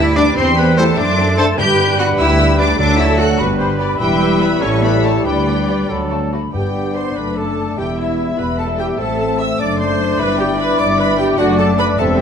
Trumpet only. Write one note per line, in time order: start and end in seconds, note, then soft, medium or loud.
0.16 0.23 D5 medium
0.77 0.84 C5 medium
1.38 1.45 C5 medium
1.59 2.75 B4 medium
2.79 3.41 A4 medium
3.39 3.99 B4 medium
4.00 4.64 B4 medium
4.62 5.25 A4 medium
5.25 5.91 B4 medium
5.90 6.33 A4 medium
6.54 7.74 D5 soft
7.78 9.61 E5 soft
9.60 11.38 D5 medium
11.39 12.01 D5 medium
11.99 12.21 E5 medium